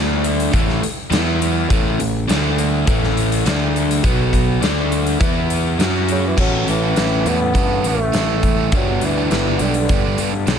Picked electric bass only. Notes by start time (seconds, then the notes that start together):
Already playing: D2
0.53 A1
0.82 muted picked electric bass stroke
1.10 E2
1.70 A1
1.99 A1
2.29 D2
2.88 A1
3.45 D2
4.04 B1
4.61 D2
5.20 E2
5.79 F#2
6.37 A1
6.68 A1
6.96 A1
7.25 E2
7.54 G2
7.84 A1
8.14 A1
8.43 A1
8.72 G1
9.02 D2
9.31 G1
9.60 B1
9.90 G1
10.19 G2
10.47 B1